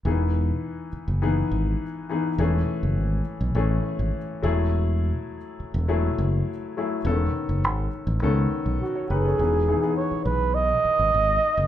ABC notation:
X:1
M:4/4
L:1/16
Q:1/4=103
K:E
V:1 name="Flugelhorn"
z16 | z16 | z16 | z12 F2 G2- |
G4 c2 B2 d8 |]
V:2 name="Grand piano"
z16 | z16 | z16 | z12 z c [DB] [CA]- |
[CA] z12 z3 |]
V:3 name="Grand piano"
[E,B,DG]6 z2 [E,B,DG]4 z2 [E,B,DG] z | [E,A,CG]6 z2 [E,A,CG]4 z2 [F,A,EG]2- | [F,A,EG]4 z4 [F,A,EG]4 z2 [F,A,EG] z | [C,D,B,CA]6 z2 [D,B,CA]4 z4 |
[E,B,DG] z [E,B,DG] [E,B,DG]6 z6 z |]
V:4 name="Fingered electric bass" clef=bass
E,,,4 z3 F,,,3 G,,,2 z4 | E,,,2 z F,,, G,,,2 z B,,, A,,,2 z G,,, z2 E,,,2- | E,,,4 z3 E,,,3 F,,,2 z4 | E,,,2 z F,,, G,,,2 z A,,, C,,2 z B,,, z2 F,,,2 |
E,,,3 z3 B,,,4 z G,,, G,,,2 z F,,, |]